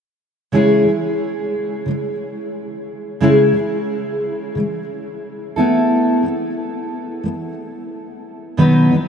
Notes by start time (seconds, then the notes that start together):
0.52 C#3 G#3 C#4 E4 G#4
0.86 C#3 G#3
1.86 C#3 G#3
3.20 C#3 G#3 C#4 E4 G#4
3.54 C#3 G#3
4.55 C#3 G#3
5.56 A3 B3 E4 A4
6.23 A3 B3
7.24 A3 B3
8.57 B2 D#3 F#3 B3 D#4 B4
8.91 B2 D#3 F#3